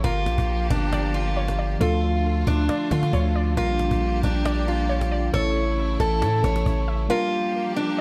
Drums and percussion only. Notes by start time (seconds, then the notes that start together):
0.04 cajon bass
0.26 cajon slap
0.32 cajon slap
0.38 cajon bass
0.70 cajon bass
0.93 cajon slap
1.15 cajon slap
1.22 cajon slap
1.29 cajon slap
1.37 cajon slap
1.43 cajon slap
1.48 cajon slap
1.71 cajon slap
1.81 cajon bass
2.25 cajon slap
2.47 cajon bass, cajon slap
2.69 cajon slap
2.91 cajon bass, cajon slap
3.03 cajon slap
3.13 cajon bass
3.35 cajon slap
3.57 cajon bass
3.79 cajon slap
3.91 cajon bass
4.23 cajon bass
4.45 cajon slap
4.68 cajon slap
4.90 cajon slap
5.01 cajon slap
5.34 cajon bass
5.78 cajon slap
6.00 cajon bass, cajon slap
6.22 cajon slap
6.44 cajon bass, cajon slap
6.56 cajon slap
6.66 cajon bass
6.88 cajon slap